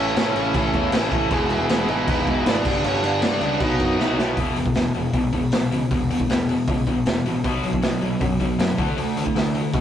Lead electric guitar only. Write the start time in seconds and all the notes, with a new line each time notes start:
Already playing: C#4 C#5
0.15 C#4 C#5
1.32 G#3 G#4
1.59 G#3 G#4
1.89 D#4 D#5
2.47 D4 D5
2.85 C#4 C#5
3.03 D4 D5
3.24 D4 D5
3.62 D#4 D#5